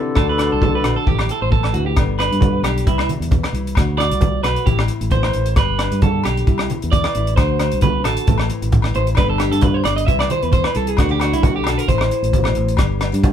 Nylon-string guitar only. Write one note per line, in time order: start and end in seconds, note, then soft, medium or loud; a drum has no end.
0.00 0.13 E3 medium
0.00 0.14 C4 medium
0.00 0.16 E4 medium
0.16 1.06 D3 medium
0.16 0.61 A3 medium
0.16 1.05 D4 medium
0.16 0.38 F#4 medium
0.39 0.83 F#4 medium
0.62 1.04 A3 medium
0.84 1.04 F#4 medium
1.06 1.96 A2 medium
1.06 1.73 E4 medium
1.28 1.94 C4 soft
1.50 1.94 E3 medium
1.74 1.97 E4 medium
1.96 2.84 G2 medium
1.96 2.39 D3 medium
1.96 2.85 B3 medium
1.96 2.18 D4 medium
1.96 2.86 G4 medium
2.20 2.62 D4 soft
2.40 2.86 D3 medium
2.64 2.84 D4 medium
2.85 3.31 C3 medium
2.85 3.30 E3 medium
2.85 3.77 G3 medium
2.85 3.09 C4 medium
3.10 3.75 C4 medium
3.31 3.74 E3 medium
3.55 3.77 E4 medium
3.77 3.99 F#4 medium
3.77 muted nylon-string guitar stroke medium
4.00 4.42 F#4 medium
4.21 4.64 A3 medium
4.43 4.64 F#4 medium
4.66 5.57 A2 medium
4.66 5.35 E4 medium
4.89 5.55 C4 medium
5.12 5.55 E3 medium
5.36 5.57 E4 medium
5.57 6.45 G2 medium
5.57 6.45 G4 medium
5.80 6.23 D4 soft
6.00 6.46 D3 medium
6.25 6.45 D4 medium
6.47 6.92 C3 medium
6.47 7.15 E4 medium
6.69 7.35 C4 medium
6.92 7.35 E3 medium
7.17 7.37 E4 medium
7.36 8.26 D3 medium
7.36 7.60 F#4 medium
7.61 8.03 F#4 medium
7.82 8.25 A3 medium
8.05 8.25 F#4 medium
8.26 9.17 A2 medium
8.26 8.71 E3 medium
8.26 9.15 A3 medium
8.26 8.48 C4 medium
8.26 8.93 E4 medium
8.50 9.15 C4 medium
8.72 9.15 E3 medium
8.94 9.17 E4 medium
9.15 10.04 G2 medium
9.15 9.61 D3 medium
9.15 10.05 B3 medium
9.15 9.38 D4 medium
9.15 9.84 G4 medium
9.39 10.05 D4 soft
9.62 10.07 D3 medium
9.85 10.05 G4 medium
10.07 10.52 C3 medium
10.07 10.51 E3 medium
10.07 10.98 G3 medium
10.07 10.30 C4 medium
10.07 10.73 E4 medium
10.31 10.96 C4 medium
10.52 10.95 E3 medium
10.74 10.98 E4 medium
10.97 11.87 D3 medium
10.97 11.09 B3 medium
11.09 11.18 D4 medium
11.19 11.85 D4 medium
11.41 11.85 A3 medium
11.65 11.85 F#4 medium
11.88 12.32 A2 medium
11.88 12.76 E3 medium
11.88 12.76 A3 medium
11.88 12.12 C4 medium
11.88 12.76 E4 medium
12.32 12.54 B2 medium
12.54 12.77 A2 medium
12.76 13.33 G2 medium
12.76 13.33 G4 medium
12.99 13.12 B3 medium
13.12 13.33 D4 soft
13.22 13.33 D3 medium